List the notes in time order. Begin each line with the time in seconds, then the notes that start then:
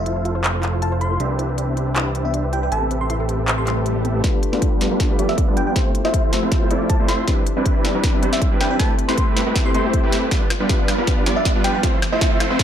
Already playing: F1 C3 F3 A3 E4 F4 A4 C5 E5 F5
0.06 E4, closed hi-hat
0.16 C5
0.25 F4, closed hi-hat
0.35 C5
0.44 clap, closed hi-hat
0.54 A3
0.63 E4, clap, closed hi-hat
0.73 C5
0.82 F4 A5, closed hi-hat
0.92 C5
1.01 C6, closed hi-hat
1.11 A3
1.20 C2 E3 D4 G4 B4 C5 E5, closed hi-hat
1.30 B4
1.39 E4, closed hi-hat
1.49 B4
1.58 closed hi-hat
1.68 B3
1.77 D4, closed hi-hat
1.87 B4
1.96 E4, clap, closed hi-hat
2.06 B4
2.15 closed hi-hat
2.25 B3 E5
2.34 D4, closed hi-hat
2.44 B4
2.53 E4 G5, closed hi-hat
2.63 B4 G5
2.72 A1 A3 C4 G4 A4 B4 E5 A5, closed hi-hat
2.82 A3
2.91 C4, closed hi-hat
3.01 A4 C6
3.10 E4 C6, closed hi-hat
3.20 A4
3.29 closed hi-hat
3.39 A3
3.48 C4, clap, closed hi-hat, swell
3.58 A4 C6
3.67 E4 C6, clap, closed hi-hat
3.77 B4
3.86 closed hi-hat
3.96 A3
4.05 B3, closed hi-hat
4.15 A3
4.23 F3 G3 A3 B3 D4 F4 G4 B4, kick, snare, closed hi-hat
4.43 closed hi-hat
4.52 G3 A3 B3 D4 F4 G4 B4, snare
4.62 kick, closed hi-hat
4.80 A3 D4 F4 G4 B4, snare, closed hi-hat
4.91 G3 B3 D4 F4 B4
5.00 kick, snare, closed hi-hat
5.09 A3 D4 F4 G4 B4
5.19 G3 B3 D4 F4 D5, closed hi-hat
5.28 A3 D4 F4 G4 B4 E5, snare
5.38 kick, closed hi-hat
5.47 G3 A3 B3 D4 F4 G4 B4 D5
5.57 G5, closed hi-hat
5.67 G5
5.75 F3 A3 C4 E4 F4 G4 A4 C5 E5, kick, snare, closed hi-hat
5.95 closed hi-hat
6.04 A3 C4 E4 F4 G4 C5 E5, snare
6.14 kick, closed hi-hat
6.32 A3 E4 F4 G4 C5, snare, closed hi-hat
6.43 A3 C4 E4 F4 C5
6.52 kick, snare, closed hi-hat
6.61 A3 E4 F4 G4 C5
6.71 A3 C4 E4 F4 D5, closed hi-hat
6.80 A3 E4 F4 G4 C5
6.90 A5, kick, closed hi-hat
6.99 A3 C4 E4 F4 G4 C5 D5
7.09 C6, snare, closed hi-hat
7.27 E3 G3 C4 D4 E4 G4 B4, kick, snare, closed hi-hat
7.47 closed hi-hat
7.56 G3 C4 D4 E4 G4 B4
7.66 kick, closed hi-hat
7.84 C4 D4 E4 G4 B4, snare, closed hi-hat
7.95 G3 C4 D4 E4 B4
8.04 kick, snare, closed hi-hat
8.13 C4 D4 E4 G4 B4
8.23 G3 C4 D4 E4 C5, closed hi-hat
8.32 C4 D4 E4 G4 B4 E5, snare
8.42 kick, closed hi-hat
8.51 G3 C4 D4 E4 G4 B4 C5
8.61 G5, snare, closed hi-hat
8.71 G5
8.79 G3 A3 C4 E4 G4 A4 B4 A5, kick, snare, closed hi-hat
8.99 closed hi-hat
9.08 A3 C4 E4 G4 B4 C6, snare
9.17 C6, kick, closed hi-hat
9.36 A3 C4 E4 G4 B4, snare, closed hi-hat
9.47 A3 C4 E4 G4 B4
9.56 kick, snare, closed hi-hat
9.65 A3 C4 E4 G4 B4 C6
9.74 A3 C4 E4 G4 C5 C6, closed hi-hat
9.83 A3 C4 E4 G4 C5
9.93 kick, closed hi-hat
10.03 A3 C4 E4 G4 B4
10.11 A3 C4 E4 G4 B4, snare, closed hi-hat
10.31 F3 G3 B3 F4 G4 D5, kick, snare, closed hi-hat, riser
10.41 B3
10.50 F4, snare, closed hi-hat, high woodblock
10.60 G3 B3 D4 F4 B4 D5
10.69 G4, kick, snare, closed hi-hat
10.79 D5
10.88 snare, closed hi-hat, high woodblock
10.98 G3 B3 D4 F4 B4
11.07 F4, kick, snare, closed hi-hat
11.17 D5
11.26 G3 B3 D4 F4 G4 D5, snare, closed hi-hat
11.36 D5 E5
11.45 kick, snare, closed hi-hat
11.55 G3 B3 D4 F4 B4
11.64 F4 G5, snare, closed hi-hat
11.74 D5 G5
11.83 A3 C4 E4 F4 A4 C5 E5, kick, snare, closed hi-hat
11.93 C5
12.02 snare, closed hi-hat, high woodblock
12.12 A3 C4 E4 F4 C5 E5
12.21 E4, kick, snare, closed hi-hat
12.31 C5
12.40 F4, snare, closed hi-hat, high woodblock
12.50 A3 C4 E4 F4 C5
12.59 kick, snare, closed hi-hat